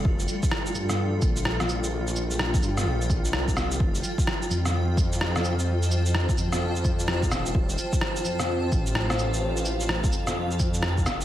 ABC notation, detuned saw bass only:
X:1
M:4/4
L:1/8
Q:"Swing 16ths" 1/4=128
K:Fmix
V:1 name="Detuned saw bass" clef=bass
F,,, z2 G,,2 B,,,3- | B,,,3 G,, B,,,2 C,,2 | F,,, z2 F,,4- F,,- | F,,2 z F,,4 E,,,- |
E,,, z2 F,,2 A,,,3- | A,,,3 F,,4 F,,, |]